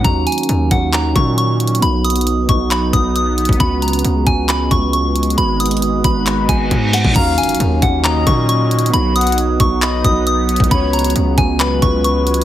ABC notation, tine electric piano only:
X:1
M:4/4
L:1/16
Q:1/4=135
K:Ebm
V:1 name="Tine electric piano"
[DEG]2 z [DEG]2 z [DEG]3 z [DEG]4 z2 | [=B,^D^F]2 z [B,DF]2 z [B,DF]3 z [B,DF]4 z2 | [CDG]2 z [CDG]2 z [CDG]3 z [CF]4 z2 | [A,CG]2 z [A,CG]2 z [A,CG]3 z [A,CG]4 z2 |
[DEG]2 z [DEG]2 z [DE]3 z [DEG]4 z2 | [=B,^D^F]2 z [B,DF]2 z [B,DF]3 z [B,DF]4 z2 | [CDG]2 z [CDG]2 z [CDG]3 z [CF]4 z2 |]